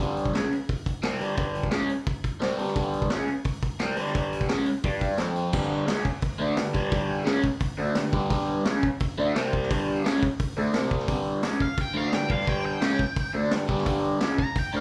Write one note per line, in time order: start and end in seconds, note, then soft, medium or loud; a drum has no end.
0.00 0.31 G2 medium
0.00 0.33 G2 medium
0.00 0.33 D3 medium
0.00 0.33 G3 loud
0.17 open hi-hat medium
0.26 kick medium
0.34 0.50 C#2 medium
0.34 0.51 C#3 medium
0.34 0.51 G#3 medium
0.34 0.51 C#4 medium
0.34 snare loud
0.34 open hi-hat medium
0.53 open hi-hat medium
0.69 kick loud
0.69 open hi-hat medium
0.86 kick medium
0.86 open hi-hat medium
1.03 1.20 C2 medium
1.03 1.19 C3 medium
1.03 1.19 G3 medium
1.03 1.20 C4 loud
1.03 snare loud
1.03 open hi-hat medium
1.19 1.34 G2 medium
1.19 1.36 G2 loud
1.19 1.34 D3 medium
1.19 1.35 G3 loud
1.19 open hi-hat medium
1.35 1.71 G2 medium
1.35 1.70 G2 medium
1.35 1.71 D3 loud
1.35 1.71 G3 medium
1.35 kick loud
1.35 open hi-hat medium
1.55 open hi-hat medium
1.63 kick medium
1.71 1.88 C#2 medium
1.71 1.89 C#3 medium
1.71 1.89 G#3 medium
1.71 1.89 C#4 medium
1.71 snare loud
1.71 open hi-hat medium
1.89 open hi-hat medium
2.06 kick loud
2.06 open hi-hat medium
2.24 kick medium
2.24 open hi-hat medium
2.40 2.56 C2 medium
2.40 2.58 C3 medium
2.40 2.58 G3 medium
2.40 2.58 C4 loud
2.40 snare loud
2.40 open hi-hat medium
2.57 2.74 G2 loud
2.57 2.74 G2 medium
2.57 2.75 D3 medium
2.57 2.75 G3 loud
2.57 open hi-hat medium
2.67 snare soft
2.75 3.10 G2 medium
2.75 3.08 G2 medium
2.75 3.10 D3 medium
2.75 3.10 G3 loud
2.75 kick loud
2.75 open hi-hat medium
2.93 open hi-hat medium
3.02 kick medium
3.09 3.26 C#2 medium
3.09 3.28 C#3 medium
3.09 3.28 G#3 medium
3.09 3.28 C#4 loud
3.09 snare loud
3.09 open hi-hat medium
3.28 open hi-hat medium
3.44 kick loud
3.44 open hi-hat medium
3.62 kick medium
3.62 open hi-hat medium
3.79 3.96 C2 loud
3.79 3.97 C3 medium
3.79 3.96 G3 loud
3.79 3.97 C4 loud
3.79 snare loud
3.79 open hi-hat medium
3.96 4.13 G2 medium
3.96 4.14 G2 loud
3.96 4.13 D3 medium
3.96 4.14 G3 loud
3.96 open hi-hat medium
4.06 snare soft
4.14 4.49 G2 medium
4.14 4.47 G2 medium
4.14 4.48 D3 medium
4.14 4.49 G3 medium
4.14 kick loud
4.14 open hi-hat medium
4.33 open hi-hat medium
4.41 kick medium
4.48 4.65 C#2 medium
4.48 4.66 C#3 medium
4.48 4.67 G#3 loud
4.48 4.67 C#4 loud
4.48 snare loud
4.48 open hi-hat medium
4.66 open hi-hat medium
4.83 5.16 G2 medium
4.83 5.19 G3 medium
4.83 5.19 D4 medium
4.83 5.19 G4 loud
4.83 kick loud
4.83 open hi-hat medium
5.01 kick medium
5.01 open hi-hat medium
5.17 5.50 F2 loud
5.17 5.53 F3 loud
5.17 5.53 C4 medium
5.17 5.53 F4 medium
5.17 snare loud
5.17 open hi-hat medium
5.36 open hi-hat medium
5.53 5.87 G2 medium
5.53 5.85 G2 loud
5.53 5.87 D3 medium
5.53 5.88 G3 medium
5.53 kick loud
5.53 crash loud
5.86 6.03 C#2 loud
5.86 6.05 C#3 medium
5.86 6.05 G#3 loud
5.86 6.05 C#4 loud
5.86 snare loud
5.86 open hi-hat medium
6.05 kick medium
6.21 kick loud
6.21 open hi-hat medium
6.38 6.55 D2 loud
6.38 6.56 D3 medium
6.38 6.57 A3 medium
6.38 6.57 D4 loud
6.56 6.73 G2 medium
6.56 6.71 G2 medium
6.56 6.71 D3 medium
6.56 snare loud
6.56 open hi-hat medium
6.73 6.89 G2 medium
6.73 6.91 G2 loud
6.73 6.90 D3 loud
6.73 6.90 G3 loud
6.73 kick medium
6.90 7.25 G2 medium
6.90 7.24 G2 loud
6.90 7.24 D3 medium
6.90 7.25 G3 loud
6.90 kick loud
6.90 open hi-hat medium
7.24 7.43 C#2 loud
7.24 7.42 C#3 loud
7.24 7.43 G#3 loud
7.24 7.43 C#4 loud
7.24 snare loud
7.24 open hi-hat medium
7.44 kick medium
7.60 kick loud
7.60 open hi-hat medium
7.77 7.94 D2 medium
7.77 7.94 D3 medium
7.77 7.95 A3 medium
7.77 7.96 D4 loud
7.95 8.09 G2 medium
7.95 8.12 G2 medium
7.95 8.10 D3 medium
7.95 snare loud
7.95 open hi-hat medium
8.12 8.29 G2 medium
8.12 8.29 G2 loud
8.12 8.29 D3 loud
8.12 8.30 G3 loud
8.12 kick medium
8.30 8.65 G2 loud
8.30 8.63 G2 loud
8.30 8.65 D3 medium
8.30 8.65 G3 loud
8.30 kick loud
8.30 open hi-hat medium
8.65 8.81 C#2 loud
8.65 8.82 C#3 medium
8.65 8.83 G#3 loud
8.65 8.83 C#4 loud
8.65 snare loud
8.65 open hi-hat medium
8.83 kick medium
9.00 kick loud
9.00 open hi-hat medium
9.17 9.34 D2 loud
9.17 9.34 D3 medium
9.17 9.35 A3 medium
9.17 9.35 D4 loud
9.35 9.67 C2 loud
9.35 9.69 C3 loud
9.35 9.69 G3 loud
9.35 9.70 C4 loud
9.35 snare loud
9.35 open hi-hat medium
9.53 kick medium
9.63 snare soft
9.70 10.04 G2 loud
9.70 10.02 G2 medium
9.70 10.04 D3 medium
9.70 10.04 G3 loud
9.70 kick loud
9.70 open hi-hat medium
10.04 10.20 C#2 loud
10.04 10.21 C#3 medium
10.04 10.21 G#3 loud
10.04 10.22 C#4 loud
10.04 snare loud
10.04 open hi-hat medium
10.23 kick medium
10.39 kick loud
10.39 open hi-hat medium
10.56 10.72 D2 medium
10.56 10.73 D3 medium
10.56 10.74 A3 loud
10.56 10.74 D4 loud
10.73 11.05 C2 loud
10.73 11.08 C3 medium
10.73 11.08 G3 loud
10.73 11.08 C4 loud
10.73 snare loud
10.73 open hi-hat medium
10.91 kick medium
10.99 snare soft
11.08 11.43 G2 loud
11.08 11.41 G2 loud
11.08 11.43 D3 loud
11.08 11.43 G3 medium
11.08 kick loud
11.08 open hi-hat medium
11.43 11.59 C#2 medium
11.43 11.60 C#3 loud
11.43 11.60 G#3 loud
11.43 11.61 C#4 loud
11.43 snare loud
11.43 open hi-hat medium
11.60 11.81 F5 loud
11.60 kick medium
11.77 11.97 G5 loud
11.77 kick loud
11.77 open hi-hat medium
11.94 12.12 D2 medium
11.94 12.11 D3 medium
11.94 12.12 A3 medium
11.94 12.12 D4 loud
11.94 12.14 F5 medium
12.12 12.26 G2 medium
12.12 12.29 G2 medium
12.12 12.26 D3 medium
12.12 12.31 G5 medium
12.12 snare loud
12.12 open hi-hat medium
12.28 12.45 G2 medium
12.28 12.46 G2 loud
12.28 12.46 D3 medium
12.28 12.47 G3 loud
12.28 12.49 F5 medium
12.28 kick medium
12.40 snare soft
12.46 12.81 G2 medium
12.46 12.80 G2 medium
12.46 12.81 D3 medium
12.46 12.81 G3 loud
12.46 12.64 G5 loud
12.46 kick loud
12.46 open hi-hat medium
12.66 13.33 G5 loud
12.81 12.98 C#2 medium
12.81 12.99 C#3 medium
12.81 12.99 G#3 loud
12.81 12.99 C#4 loud
12.81 snare loud
12.81 open hi-hat medium
12.99 kick medium
13.16 kick loud
13.16 open hi-hat medium
13.33 13.50 D2 loud
13.33 13.50 D3 medium
13.33 13.51 A3 medium
13.33 13.51 D4 loud
13.51 13.65 G2 medium
13.51 13.68 G2 medium
13.51 13.65 D3 medium
13.51 snare loud
13.51 open hi-hat medium
13.67 13.84 G2 medium
13.67 13.85 G2 loud
13.67 13.85 D3 loud
13.67 13.85 G3 loud
13.67 kick medium
13.77 snare soft
13.86 14.20 G2 medium
13.86 14.19 G2 loud
13.86 14.19 D3 loud
13.86 14.20 G3 medium
13.86 kick loud
13.86 open hi-hat medium
14.19 14.38 C#2 loud
14.19 14.37 C#3 medium
14.19 14.37 G#3 medium
14.19 14.37 C#4 loud
14.19 snare loud
14.19 open hi-hat medium
14.38 14.56 A#5 loud
14.38 kick medium
14.55 14.74 G5 loud
14.55 kick loud
14.55 open hi-hat medium
14.73 14.80 D2 loud
14.73 14.80 D3 medium
14.73 14.80 A3 medium
14.73 14.80 D4 loud
14.73 14.80 F5 medium